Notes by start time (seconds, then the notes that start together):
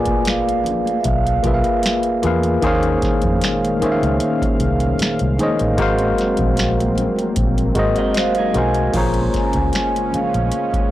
Already playing: A#1 A#3 F4 G#4 B4 D5 G#5
0.05 kick, closed hi-hat, high conga
0.25 finger snap, snare, closed hi-hat
0.29 F5
0.47 closed hi-hat, high conga
0.64 closed hi-hat, low conga
0.85 closed hi-hat, high conga
1.01 E5, closed hi-hat, muted conga
1.05 B1 F5, kick
1.25 closed hi-hat, muted conga
1.43 B1 A#3 F4 G#4 B4, kick, closed hi-hat
1.48 E5
1.54 F5
1.64 closed hi-hat
1.83 finger snap, snare, closed hi-hat, high conga
2.03 closed hi-hat
2.22 E2 A#3 F4 G#4 B4, closed hi-hat, high conga, low conga
2.27 F5
2.43 closed hi-hat
2.62 D#2 A#2 D#3 G#3 A#3 C#4 G#4 C5 C#5 F5, kick, closed hi-hat, muted conga, low conga
2.67 F5
2.83 closed hi-hat, muted conga
3.02 kick, snare, closed hi-hat
3.21 F2, kick, closed hi-hat, high conga
3.40 snare, closed hi-hat, muted conga
3.45 finger snap
3.63 closed hi-hat, high conga
3.80 D#3 A#3 G#4 C5, muted fingered electric bass stroke, closed hi-hat, low conga
3.84 C#5 E5
3.92 F5
4.01 C#2, closed hi-hat, high conga
4.20 closed hi-hat
4.39 muted fingered electric bass stroke, kick, closed hi-hat, muted conga
4.60 C2, closed hi-hat
4.80 closed hi-hat
4.98 muted fingered electric bass stroke, closed hi-hat, muted conga, high conga
5.02 finger snap, snare
5.19 C2, closed hi-hat
5.38 D#3 A#3 G#4 C5 C#5, closed hi-hat, high conga, low conga
5.43 D#5
5.59 A1, closed hi-hat
5.77 G#1 F#3 G#3 A#3 C4 F#4 A#4 C5, kick, closed hi-hat, muted conga, low conga
5.82 F5
5.99 closed hi-hat, muted conga
6.18 snare, closed hi-hat
6.37 A#1, kick, closed hi-hat, high conga
6.56 snare, closed hi-hat, muted conga
6.60 finger snap
6.79 closed hi-hat, muted conga, high conga
6.95 closed hi-hat, low conga
7.16 closed hi-hat, high conga
7.36 A#1, kick, closed hi-hat
7.58 closed hi-hat
7.75 G#1 G#3 F#4 A#4 C5, kick, closed hi-hat
7.79 D#5
7.96 A#4 D#5, closed hi-hat
8.14 F#4 C5, snare, closed hi-hat, muted conga, high conga
8.18 F5, finger snap
8.35 G#4, closed hi-hat, muted conga
8.39 D#4
8.54 B1 G#3 F#4 A#4 C5 G#5, closed hi-hat, high conga, low conga
8.58 F5
8.74 closed hi-hat
8.93 A#1 C#3 G#3 A#3 C#4 F4 G#4 C5 A#5, kick, closed hi-hat, crash, muted conga, low conga
8.97 C#5
9.14 closed hi-hat
9.21 C6
9.29 A#5
9.34 G#5, kick, snare, closed hi-hat
9.47 A#5
9.53 C#2 G#5, kick, closed hi-hat, high conga
9.73 finger snap, snare, closed hi-hat
9.95 closed hi-hat, muted conga, high conga
10.12 F5, muted fingered electric bass stroke, closed hi-hat, low conga
10.33 A#1, closed hi-hat, high conga
10.52 closed hi-hat, muted conga
10.71 muted fingered electric bass stroke, kick, closed hi-hat, muted conga